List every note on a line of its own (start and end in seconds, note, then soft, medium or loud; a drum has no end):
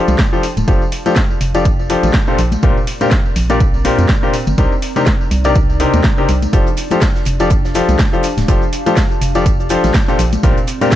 0.00 0.14 F3 medium
0.00 0.19 C4 medium
0.00 0.14 D4 medium
0.00 3.27 D4 medium
0.00 0.14 F4 medium
0.00 0.14 G4 medium
0.00 5.37 G4 medium
0.00 0.14 A4 medium
0.00 0.14 C5 loud
0.00 3.16 F5 medium
0.00 2.38 A5 medium
0.08 0.16 C2 loud
0.08 closed hi-hat medium
0.08 tambourine medium
0.08 high conga medium
0.18 kick loud
0.18 snare loud
0.18 tambourine medium
0.33 0.43 F3 medium
0.33 0.43 D4 medium
0.33 0.43 F4 medium
0.33 0.43 G4 medium
0.33 0.43 A4 medium
0.33 0.43 C5 loud
0.33 tambourine soft
0.43 open hi-hat loud
0.57 0.65 D1 medium
0.57 closed hi-hat medium
0.57 tambourine medium
0.57 high conga medium
0.68 0.78 F1 loud
0.68 0.81 F3 medium
0.68 0.81 D4 medium
0.68 0.81 F4 medium
0.68 0.81 G4 medium
0.68 0.81 A4 medium
0.68 0.81 C5 loud
0.68 kick loud
0.68 closed hi-hat medium
0.68 tambourine medium
0.82 tambourine soft
0.92 open hi-hat loud
1.06 1.16 F3 medium
1.06 1.16 D4 medium
1.06 1.16 F4 medium
1.06 1.16 G4 medium
1.06 1.16 A4 medium
1.06 1.16 C5 medium
1.06 closed hi-hat medium
1.06 tambourine medium
1.06 high conga medium
1.16 kick loud
1.16 snare loud
1.16 closed hi-hat medium
1.16 tambourine medium
1.30 tambourine soft
1.41 1.97 F1 medium
1.41 open hi-hat loud
1.55 1.65 F3 medium
1.55 1.65 D4 medium
1.55 1.65 F4 medium
1.55 1.65 G4 medium
1.55 1.65 A4 medium
1.55 1.65 D5 medium
1.55 closed hi-hat medium
1.55 tambourine medium
1.65 kick loud
1.65 closed hi-hat medium
1.65 tambourine medium
1.79 tambourine soft
1.90 2.09 F3 medium
1.90 2.09 D4 medium
1.90 2.09 F4 medium
1.90 2.09 G4 medium
1.90 2.09 A4 medium
1.90 2.09 C5 loud
1.90 open hi-hat loud
2.03 2.11 A1 medium
2.03 closed hi-hat medium
2.03 tambourine medium
2.03 high conga medium
2.14 kick loud
2.14 snare loud
2.27 2.37 A#2 medium
2.27 2.37 D4 medium
2.27 2.37 F4 medium
2.27 2.37 G4 medium
2.27 2.37 A4 medium
2.27 2.37 C5 loud
2.27 tambourine soft
2.38 2.57 A#1 medium
2.38 7.60 C4 medium
2.38 open hi-hat loud
2.52 closed hi-hat medium
2.52 tambourine medium
2.52 high conga medium
2.63 2.73 A#1 loud
2.63 2.76 A#2 medium
2.63 2.76 D4 medium
2.63 2.76 F4 medium
2.63 2.76 G4 medium
2.63 2.76 A#4 medium
2.63 2.76 C5 loud
2.63 kick loud
2.63 closed hi-hat medium
2.63 tambourine medium
2.77 tambourine soft
2.86 7.13 D5 medium
2.86 open hi-hat loud
3.01 3.11 A#2 medium
3.01 3.11 D4 medium
3.01 3.11 F4 medium
3.01 3.11 G4 medium
3.01 3.11 A#4 medium
3.01 3.11 C5 medium
3.01 closed hi-hat medium
3.01 tambourine medium
3.01 high conga medium
3.11 6.53 A#5 medium
3.11 kick loud
3.11 snare loud
3.11 closed hi-hat medium
3.25 tambourine soft
3.36 3.92 A#1 medium
3.36 open hi-hat loud
3.50 3.60 A#2 medium
3.50 3.60 D4 medium
3.50 3.60 F4 medium
3.50 3.60 G4 medium
3.50 3.60 A#4 medium
3.50 3.60 D5 medium
3.50 closed hi-hat medium
3.50 tambourine medium
3.60 kick loud
3.60 closed hi-hat medium
3.60 tambourine medium
3.74 tambourine soft
3.85 4.04 A#2 medium
3.85 4.04 D4 medium
3.85 4.04 F4 medium
3.85 4.04 G4 medium
3.85 4.04 A#4 medium
3.85 4.04 C5 loud
3.85 open hi-hat loud
3.99 4.06 F2 loud
3.99 closed hi-hat medium
3.99 tambourine medium
3.99 high conga loud
4.09 kick loud
4.09 snare loud
4.09 tambourine medium
4.23 4.33 A#2 medium
4.23 4.33 D4 medium
4.23 4.33 F4 medium
4.23 4.33 G4 medium
4.23 4.33 A#4 medium
4.23 4.33 C5 loud
4.23 tambourine soft
4.34 open hi-hat loud
4.47 4.55 G1 medium
4.47 closed hi-hat medium
4.47 tambourine medium
4.47 high conga medium
4.58 4.68 C2 medium
4.58 4.71 C3 medium
4.58 4.71 D4 medium
4.58 4.71 D#4 medium
4.58 4.71 G4 medium
4.58 4.71 A#4 medium
4.58 4.71 C5 loud
4.58 kick loud
4.58 closed hi-hat medium
4.58 tambourine medium
4.72 tambourine soft
4.82 open hi-hat loud
4.88 6.53 D#4 medium
4.96 5.06 C3 medium
4.96 5.06 D4 medium
4.96 5.06 D#4 medium
4.96 5.06 G4 medium
4.96 5.06 A#4 medium
4.96 5.06 C5 medium
4.96 closed hi-hat soft
4.96 tambourine medium
4.96 high conga medium
5.06 kick loud
5.06 snare loud
5.06 closed hi-hat medium
5.06 tambourine medium
5.21 tambourine soft
5.31 5.87 C2 medium
5.31 open hi-hat loud
5.44 5.55 C3 medium
5.44 5.55 D4 medium
5.44 5.55 D#4 medium
5.44 5.55 G4 medium
5.44 5.55 A#4 medium
5.44 5.55 D5 medium
5.44 closed hi-hat soft
5.44 tambourine medium
5.55 kick loud
5.55 closed hi-hat medium
5.55 tambourine medium
5.70 tambourine soft
5.80 5.99 C3 medium
5.80 5.99 D4 medium
5.80 5.99 D#4 medium
5.80 5.99 G4 medium
5.80 5.99 A#4 medium
5.80 5.99 C5 loud
5.80 open hi-hat loud
5.94 6.01 D#2 medium
5.94 closed hi-hat medium
5.94 tambourine medium
5.94 high conga medium
6.04 kick loud
6.04 snare loud
6.04 tambourine medium
6.17 6.28 C3 medium
6.17 6.28 D4 medium
6.17 6.28 D#4 medium
6.17 6.28 G4 medium
6.17 6.28 A#4 medium
6.17 6.28 C5 medium
6.17 tambourine soft
6.29 6.47 C2 medium
6.29 open hi-hat loud
6.42 closed hi-hat soft
6.42 tambourine medium
6.42 high conga medium
6.53 6.63 F1 loud
6.53 6.66 F3 medium
6.53 6.66 D4 medium
6.53 10.96 D4 medium
6.53 6.66 F4 medium
6.53 6.66 G4 medium
6.53 6.66 A4 medium
6.53 6.66 C5 loud
6.53 kick loud
6.53 closed hi-hat medium
6.53 tambourine medium
6.53 shaker soft
6.66 closed hi-hat soft
6.66 tambourine soft
6.66 shaker soft
6.76 10.96 G4 medium
6.76 closed hi-hat medium
6.76 open hi-hat loud
6.76 shaker medium
6.91 7.01 F3 medium
6.91 7.01 D4 medium
6.91 7.01 F4 medium
6.91 7.01 G4 medium
6.91 7.01 A4 medium
6.91 7.01 C5 medium
6.91 closed hi-hat soft
6.91 closed hi-hat medium
6.91 tambourine medium
6.91 high conga medium
6.91 shaker soft
7.01 kick loud
7.01 snare loud
7.01 closed hi-hat medium
7.01 tambourine medium
7.01 shaker soft
7.15 snare soft
7.15 tambourine soft
7.15 shaker soft
7.23 7.82 F1 medium
7.23 10.86 F5 medium
7.23 closed hi-hat medium
7.23 open hi-hat loud
7.23 shaker medium
7.40 7.50 F3 medium
7.40 7.50 D4 medium
7.40 7.50 F4 medium
7.40 7.50 G4 medium
7.40 7.50 A4 medium
7.40 7.50 D5 medium
7.40 10.19 A5 medium
7.40 closed hi-hat soft
7.40 tambourine medium
7.40 shaker soft
7.50 kick loud
7.50 closed hi-hat medium
7.50 tambourine medium
7.50 shaker soft
7.65 snare soft
7.65 tambourine soft
7.65 shaker soft
7.75 7.94 F3 medium
7.75 7.94 D4 medium
7.75 7.94 F4 medium
7.75 7.94 G4 medium
7.75 7.94 A4 medium
7.75 7.94 C5 loud
7.75 snare soft
7.75 closed hi-hat medium
7.75 open hi-hat loud
7.75 shaker medium
7.88 7.96 C2 loud
7.88 closed hi-hat soft
7.88 tambourine medium
7.88 high conga medium
7.88 shaker soft
7.99 kick loud
7.99 snare loud
7.99 closed hi-hat medium
7.99 tambourine medium
7.99 shaker soft
8.13 8.23 F3 medium
8.13 8.23 D4 medium
8.13 8.23 F4 medium
8.13 8.23 G4 medium
8.13 8.23 A4 medium
8.13 8.23 C5 loud
8.13 tambourine soft
8.13 shaker soft
8.23 closed hi-hat medium
8.23 open hi-hat loud
8.23 shaker medium
8.37 8.45 D1 medium
8.37 snare medium
8.37 closed hi-hat soft
8.37 tambourine medium
8.37 high conga medium
8.37 shaker soft
8.48 8.58 F1 loud
8.48 8.61 F3 medium
8.48 8.61 D4 medium
8.48 8.61 F4 medium
8.48 8.61 G4 medium
8.48 8.61 A4 medium
8.48 8.61 C5 loud
8.48 kick loud
8.48 closed hi-hat medium
8.48 closed hi-hat loud
8.48 tambourine medium
8.48 shaker soft
8.61 tambourine soft
8.61 shaker soft
8.73 closed hi-hat medium
8.73 open hi-hat loud
8.73 shaker medium
8.86 8.96 F3 medium
8.86 8.96 D4 medium
8.86 8.96 F4 medium
8.86 8.96 G4 medium
8.86 8.96 A4 medium
8.86 8.96 C5 medium
8.86 closed hi-hat medium
8.86 tambourine medium
8.86 high conga medium
8.86 shaker soft
8.97 kick loud
8.97 snare loud
8.97 closed hi-hat medium
8.97 tambourine medium
8.97 shaker soft
9.11 tambourine soft
9.11 shaker soft
9.21 9.78 F1 medium
9.21 closed hi-hat medium
9.21 open hi-hat loud
9.21 shaker medium
9.35 9.45 F3 medium
9.35 9.45 D4 medium
9.35 9.45 F4 medium
9.35 9.45 G4 medium
9.35 9.45 A4 medium
9.35 9.45 D5 medium
9.35 closed hi-hat medium
9.35 tambourine medium
9.35 shaker soft
9.46 kick loud
9.46 closed hi-hat medium
9.46 tambourine medium
9.46 shaker soft
9.60 tambourine soft
9.60 shaker soft
9.69 9.89 F3 medium
9.69 9.89 D4 medium
9.69 9.89 F4 medium
9.69 9.89 G4 medium
9.69 9.89 A4 medium
9.69 9.89 C5 loud
9.69 closed hi-hat medium
9.69 open hi-hat loud
9.69 shaker medium
9.83 9.91 A1 medium
9.83 snare soft
9.83 closed hi-hat medium
9.83 tambourine medium
9.83 high conga medium
9.83 shaker soft
9.94 kick loud
9.94 snare loud
9.94 closed hi-hat medium
9.94 tambourine medium
9.94 shaker soft
10.08 10.18 A#2 medium
10.08 10.18 D4 medium
10.08 10.18 F4 medium
10.08 10.18 G4 medium
10.08 10.18 A4 medium
10.08 10.18 C5 loud
10.08 closed hi-hat soft
10.08 tambourine soft
10.08 shaker soft
10.19 10.37 A#1 medium
10.19 10.96 C4 loud
10.19 closed hi-hat medium
10.19 open hi-hat loud
10.19 shaker medium
10.29 10.96 D5 medium
10.29 closed hi-hat medium
10.29 tambourine medium
10.29 high conga medium
10.33 shaker soft
10.43 10.53 A#1 loud
10.43 10.56 A#2 medium
10.43 10.56 D4 medium
10.43 10.56 F4 medium
10.43 10.56 G4 medium
10.43 10.56 A#4 medium
10.43 10.56 C5 loud
10.43 kick loud
10.43 closed hi-hat medium
10.43 tambourine medium
10.43 shaker soft
10.57 closed hi-hat soft
10.57 tambourine soft
10.57 shaker soft
10.67 closed hi-hat medium
10.67 open hi-hat loud
10.67 shaker medium
10.79 10.92 A#2 medium
10.79 10.92 D4 medium
10.79 10.92 F4 medium
10.79 10.92 G4 medium
10.79 10.92 A#4 medium
10.79 10.92 C5 medium
10.79 10.96 A#5 medium
10.79 closed hi-hat soft
10.79 closed hi-hat medium
10.79 tambourine medium
10.79 high conga medium
10.79 shaker soft
10.91 kick loud
10.91 snare loud
10.91 closed hi-hat medium
10.91 tambourine medium